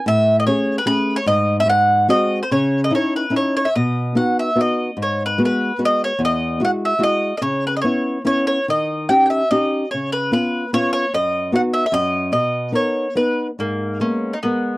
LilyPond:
<<
  \new Staff \with { instrumentName = "Mandolin" } { \time 3/4 \key cis \minor \tempo 4 = 147 e''8. dis''16 cis''8. b'16 b'8. cis''16 | dis''8. e''16 fis''4 dis''8. bis'16 | cis''8. dis''16 cis''8 b'8 \tuplet 3/2 { cis''8. cis''8 e''16 } | \key b \major dis''4 fis''8 e''8 dis''4 |
cis''8 b'8 b'4 dis''8 cis''8 | dis''4 fis''8 e''8 dis''8.~ dis''32 dis''32 | \tuplet 3/2 { cis''8. b'8 dis''16 } cis''4 cis''8 cis''8 | dis''4 g''16. g''32 e''8 dis''4 |
cis''8 b'8 b'4 cis''8 cis''8 | dis''4 \tuplet 3/2 { fis''8. e''8 e''16 } dis''4 | dis''4 cis''4 b'8. r16 | \key gis \minor ais4 cis'8. dis'16 b4 | }
  \new Staff \with { instrumentName = "Nylon-string guitar" } { \time 3/4 \key cis \minor a,4 <a cis' gis'>4 <a cis' gis'>4 | gis,4 gis,4 <gis bis fis'>4 | cis4 <cis' dis' e'>4 <cis' dis' e'>4 | \key b \major b,4 <b dis' fis'>4 <b dis' fis'>4 |
gis,4 <gis b fis'>4 <gis b fis'>4 | e,4 <gis e' fis'>4 <gis e' fis'>4 | cis4 <b cis' e'>4 <b cis' e'>4 | dis4 <cis' dis' g'>4 <cis' dis' g'>4 |
cis4 <b cis' eis'>4 <b cis' eis'>4 | fis,4 <b dis' fis'>4 fis,4 | b,4 <b dis' ais'>4 <b dis' b'>4 | \key gis \minor gis,4 <gis ais b>4 <gis b ais'>4 | }
>>